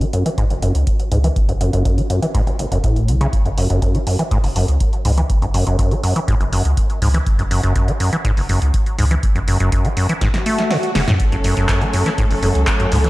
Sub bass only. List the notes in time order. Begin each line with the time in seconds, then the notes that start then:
0.50 F#1
0.75 C#2
1.12 C#2
1.36 F#1
1.73 F#1
2.72 F#1
2.96 E1
3.08 B1
3.33 F#1
3.70 F#1
4.44 F#1
4.68 C#2
5.05 C#2
5.30 F#1
5.67 F#1
6.41 F#1
6.65 C#2
7.02 C#2
7.26 F#1
7.63 F#1
8.37 F#1
8.62 C#2
8.99 C#2
9.23 F#1
9.60 F#1
10.95 E1
11.08 F#2
11.20 F#1
11.57 F#1
12.31 F#1
12.55 C#2
12.92 C#2